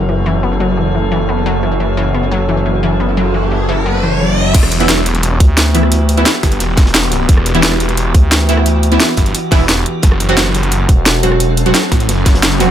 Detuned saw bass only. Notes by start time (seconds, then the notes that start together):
Already playing: F#1
4.55 E1
6.43 G1
6.60 E1
7.29 E1
9.17 G1
9.52 E1
10.03 F#1
11.92 A1
12.09 F#1
12.57 F1